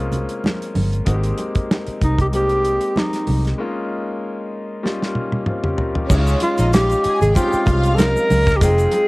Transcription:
Already playing: C2 G#3 A#3 C4 C#4 F4
0.12 closed hi-hat, muted conga, low conga
0.29 closed hi-hat
0.44 snare, high conga
0.62 closed hi-hat
0.75 G1, open hi-hat, high conga
0.93 closed hi-hat
1.05 G#1 G#3 A#3 C4 D#4 F#4, kick, closed hi-hat, muted conga
1.14 G4
1.23 closed hi-hat
1.38 closed hi-hat, muted conga
1.55 kick, closed hi-hat
1.71 snare, high conga
1.87 muted fingered electric bass stroke, closed hi-hat
2.01 C2 D#4, kick, closed hi-hat
2.19 G4, kick, closed hi-hat, low conga
2.32 G#3 A#3 C4 D#4 G4, closed hi-hat, muted conga
2.49 closed hi-hat
2.65 closed hi-hat
2.81 closed hi-hat
2.96 D#4, snare, high conga
3.13 snare, closed hi-hat
3.27 C2, open hi-hat, high conga
3.45 snare, closed hi-hat
3.58 G#3 A#3 C#4 D#4 F4
4.83 G3 A#3 C#4 D#4 F4, snare
5.02 snare
5.15 high tom
5.32 high tom
5.46 C4 F4, mid tom
5.64 C#4 G4, mid tom
5.78 F4 A#4, floor tom
5.95 C#4 G4, floor tom
6.08 C#2 G#3 C#4 D#4 E4 C#5, kick, crash, muted conga, shaker
6.18 F4
6.26 closed hi-hat, shaker
6.40 F4, closed hi-hat, muted conga
6.58 A#1 D#4 D#5, closed hi-hat, shaker
6.73 F4 G4 F5, snare, closed hi-hat, high conga, shaker
6.90 closed hi-hat, shaker
7.03 G#4 G#5, muted fingered electric bass stroke, closed hi-hat
7.21 G#1 G#4, closed hi-hat, low conga, shaker
7.34 G#3 C4 C#4 D#4 F4 G4 G5, kick, closed hi-hat, muted conga, shaker
7.53 muted fingered electric bass stroke, shaker
7.66 C2 F4 F5, kick, closed hi-hat, muted conga, low conga
7.83 closed hi-hat, shaker
7.95 A4 A#4, closed hi-hat, high conga, shaker
8.00 snare
8.17 shaker
8.30 C#2, open hi-hat, high conga, shaker
8.47 kick, snare, closed hi-hat, shaker
8.57 G4
8.61 F1 G#3 C4 D#4 F4 G#4 G5, kick, closed hi-hat, muted conga, shaker
8.78 closed hi-hat, shaker
8.92 closed hi-hat, muted conga

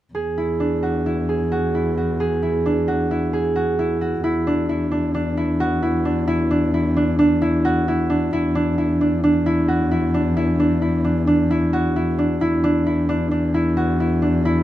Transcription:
0.14 E2 G#4
0.38 E4
0.60 D4
0.83 F#4
1.06 E4
1.29 G#4
1.52 F#4
1.75 E4
1.97 F#4
2.20 G#4
2.43 E4
2.66 D4
2.88 F#4
3.11 E4
3.33 G#4
3.56 F#4
3.79 E4
4.01 F#4
4.23 E2 E4
4.47 D4
4.69 E4
4.91 D4
5.14 D4
5.37 E4
5.60 F#4
5.82 E4
6.05 D4
6.27 E4
6.51 D4
6.74 E4
6.96 D4
7.19 D4
7.42 E4
7.65 F#4
7.88 E4
8.10 D4
8.31 E2 E4
8.55 D4
8.78 E4
9.01 D4
9.24 D4
9.46 E4
9.68 F#4
9.91 E4
10.14 D4
10.37 E4
10.60 D4
10.82 E4
11.04 D4
11.27 D4
11.50 E4
11.73 F#4
11.96 E4
12.19 D4
12.40 E2 E4
12.64 D4
12.86 E4
13.09 D4
13.31 D4
13.54 E4
13.77 F#4
14.00 E4
14.22 D4
14.45 E4

